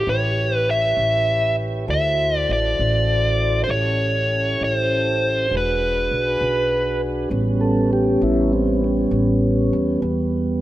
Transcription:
0.06 A1 E4 G4 B4 C#5
0.56 B4
0.71 E5
0.97 A1
1.87 D2 E4 F#4 A4 C5 E5
2.37 D5
2.49 A1 D5
2.79 A1
3.64 C#4 E4 G4 A4 C5
3.69 A1 C#5
4.61 A1 C5
5.49 E1 D4 F#4 G#4 B4
5.57 B4
6.11 B1
6.41 B1
7.29 A1 G3 B3 C#4
7.61 A4
7.93 G4
8.21 A1 E4
8.53 C4
8.84 C#4
9.11 A1
9.73 E2
10.02 E2

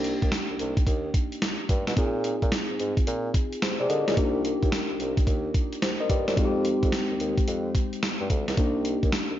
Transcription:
Already playing: C2 A#3 D4 D#4 G4
0.04 closed hi-hat
0.22 D#2, kick, closed hi-hat
0.32 snare, closed hi-hat
0.50 C2
0.59 C2, closed hi-hat
0.77 kick, closed hi-hat
0.87 D#2, kick, closed hi-hat
1.14 kick, closed hi-hat
1.32 closed hi-hat
1.42 snare, closed hi-hat
1.69 G2, kick, closed hi-hat
1.87 B2, snare, closed hi-hat
1.96 A#2 C4 D#4 F4 G#4, kick, closed hi-hat
2.24 closed hi-hat
2.42 A#2, kick, closed hi-hat
2.52 snare, closed hi-hat
2.70 G#2
2.80 G#2, closed hi-hat
2.97 kick, closed hi-hat
3.07 A#2, closed hi-hat
3.34 kick, closed hi-hat
3.52 closed hi-hat
3.62 G4 C5, snare, closed hi-hat
3.80 C3 G#4 D5
3.90 D3 A#4 D#5, closed hi-hat
4.08 C#3 F4 A#4, snare, closed hi-hat
4.16 C2 A#3 D4 D#4 G4, kick, closed hi-hat
4.45 closed hi-hat
4.63 D#2, kick, closed hi-hat
4.72 snare, closed hi-hat
4.91 C2
5.00 C2, closed hi-hat
5.17 kick, closed hi-hat
5.27 D#2, kick, closed hi-hat
5.54 kick, closed hi-hat
5.73 closed hi-hat
5.82 G4 C5, snare, closed hi-hat
6.00 A#4 D#5
6.10 G2 G4 D5, kick, closed hi-hat
6.28 F#2 G4 C5, snare, closed hi-hat
6.36 F2 G#3 C4 D#4 F#4, kick, closed hi-hat
6.45 G4
6.65 closed hi-hat
6.83 F2, kick, closed hi-hat
6.92 snare, closed hi-hat
7.11 D#2
7.20 D#2, closed hi-hat
7.38 kick, closed hi-hat
7.48 F2, closed hi-hat
7.75 kick, closed hi-hat
7.93 closed hi-hat
8.03 snare, closed hi-hat
8.21 G2
8.30 D2, kick, closed hi-hat
8.48 C#2, snare, closed hi-hat
8.57 C2 A#3 D4 D#4 G4, kick, closed hi-hat
8.85 closed hi-hat
9.03 D#2, kick, closed hi-hat
9.12 snare, closed hi-hat
9.31 C2

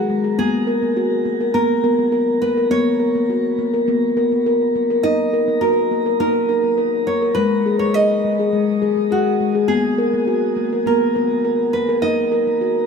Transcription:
Already playing: F#4
0.10 G#3
0.24 G#4
0.39 A#3 B3 G#4
0.67 A#4
0.82 A#3
0.97 F#4
1.25 A#3
1.41 A#4
1.54 A#3 B3 A#4
1.84 B3 A#4
1.99 A#3
2.12 A#4
2.42 A#3 B4
2.57 A#4
2.71 A#3 B3 C#5
3.00 A#4
3.15 A#3
3.30 F#4
3.58 A#3
3.74 A#4
3.88 A#3 B3
4.17 B3 A#4
4.32 A#3
4.46 A#4
4.75 A#3
4.90 A#4
5.03 A#3 D#4 D#5
5.33 A#4
5.48 A#3
5.61 F#4 A#4
5.91 A#3
6.06 A#4
6.20 A#3 D#4 A#4
6.49 D#4 A#4
6.64 A#3
6.78 A#4
7.07 A#3 C#5
7.22 A#4
7.35 G#3 B4
7.66 G#4
7.79 G#3 C#5
7.94 G#4 D#5
8.24 G#3
8.39 G#4
8.53 G#3
8.82 G#3 G#4
8.97 G#3
9.11 F#4 G#4
9.40 G#3
9.55 G#4
9.68 A#3 B3 G#4
9.98 A#4
10.14 A#3
10.27 F#4
10.56 A#3
10.73 A#4
10.86 A#3 B3 A#4
11.15 B3 A#4
11.31 A#3
11.45 A#4
11.73 A#3 B4
11.89 A#4
12.02 A#3 D#4 D#5
12.32 A#4
12.47 A#3
12.61 F#4

